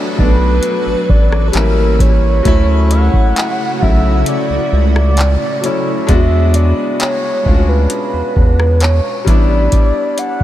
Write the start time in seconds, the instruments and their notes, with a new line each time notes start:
Already playing: grand piano F#3 A3 B3 D4, ambient pad F#3 F#4 A4 B4
0.15 analog synth bass B1, grand piano F#3 A3 B3, soft synth lead B4, kick
0.20 grand piano D4
0.63 closed hi-hat
0.86 analog synth bass A1
1.09 analog synth bass A1, soft synth lead D5, kick
1.32 cross-stick
1.48 soft synth lead A4
1.52 analog synth bass A1, grand piano G3 A#3 C#4, soft synth lead A#4, clap, closed hi-hat
1.57 grand piano E4
1.99 soft synth lead C#5, kick, closed hi-hat
2.43 analog synth bass D2, ambient pad C#3 A3 E4 F#4, grand piano F#3 A3 C#4, kick, closed hi-hat
2.48 grand piano E4
2.91 soft synth lead F#5, closed hi-hat
3.13 kick
3.36 clap, closed hi-hat
3.79 analog synth bass B1, grand piano C#3 F#3 A3, soft synth lead E5, kick
3.84 grand piano E4
4.26 soft synth lead D5, closed hi-hat
4.50 analog synth bass C#2
4.72 analog synth bass C#2
4.96 soft synth lead D5, cross-stick
5.17 clap, closed hi-hat
5.61 grand piano F#3 A3 C#4, soft synth lead C#5, closed hi-hat
5.66 grand piano E4
6.07 analog synth bass E2, grand piano G#3 B3 D4, soft synth lead E5, kick, closed hi-hat
6.12 grand piano F#4
6.54 soft synth lead D5, closed hi-hat
7.00 soft synth lead C#5, clap, closed hi-hat
7.43 analog synth bass D2, grand piano G#3 C#4 D4, kick
7.48 grand piano F4
7.54 grand piano F#4
7.69 soft synth lead B4
7.90 closed hi-hat
8.13 analog synth bass E2
8.36 analog synth bass E2, kick
8.60 cross-stick
8.80 soft synth lead C#5, clap, closed hi-hat
9.25 analog synth bass A1, grand piano G3 B3 D4, soft synth lead D5, kick, closed hi-hat
9.29 grand piano E4
9.72 kick, closed hi-hat
10.18 soft synth lead F#5, closed hi-hat
10.40 kick